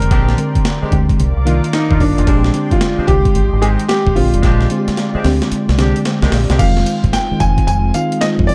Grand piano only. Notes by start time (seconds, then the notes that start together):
Already playing: A#4
1.73 D#4
2.01 D4
2.27 D4
2.72 F4
3.07 G4
3.62 G#4
3.89 G4
4.16 F4
6.59 F5
7.13 G5
7.40 G#5
7.67 G#5
7.94 F5
8.21 D#5
8.47 D5